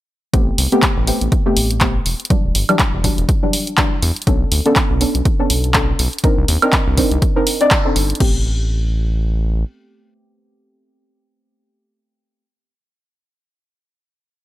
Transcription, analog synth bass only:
0.34 0.51 A1 loud
0.58 0.67 C2 loud
0.97 1.11 A1 loud
1.21 1.28 A1 loud
1.57 2.00 A1 medium
2.06 2.15 E1 medium
2.44 2.51 D1 medium
2.55 2.64 G1 loud
2.94 3.08 E1 loud
3.18 3.25 E1 loud
4.02 4.12 E2 loud
4.27 4.44 B1 loud
4.52 4.61 D2 loud
4.90 5.05 B1 loud
5.15 5.22 B1 loud
5.50 5.93 B1 medium
5.99 6.08 B1 medium
6.38 6.45 C2 medium
6.48 6.57 D#2 loud
6.87 7.02 C2 loud
7.12 7.18 C2 loud
7.96 8.13 G1 loud
8.20 9.64 A1 loud

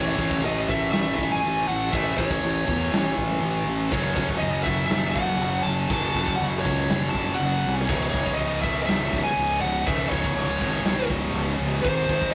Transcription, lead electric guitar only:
0.00 0.41 C#5 loud
0.45 0.69 D#5 medium
0.70 0.91 E5 loud
0.92 1.31 E5 loud
1.32 1.68 G#5 loud
1.68 1.94 F#5 medium
1.92 2.17 E5 loud
2.18 3.13 C#5 medium
3.92 4.15 C#5 loud
4.16 4.23 C#5 medium
4.38 4.63 D#5 loud
4.63 4.85 E5 loud
4.86 5.14 E5 loud
5.11 5.65 F#5 loud
5.63 6.41 A5 loud
6.36 6.43 F#5 loud
6.60 7.08 C#5 loud
7.09 7.37 A5 loud
7.35 7.71 F#5 loud
7.82 8.34 C#5 loud
8.35 8.62 D#5 loud
8.62 8.81 E5 loud
8.83 8.86 D#5 medium
8.83 9.21 E5 loud
9.23 9.61 G#5 loud
9.61 9.87 F#5 medium
9.86 10.09 E5 medium
10.10 11.06 C#5 medium
11.82 12.31 C5 loud

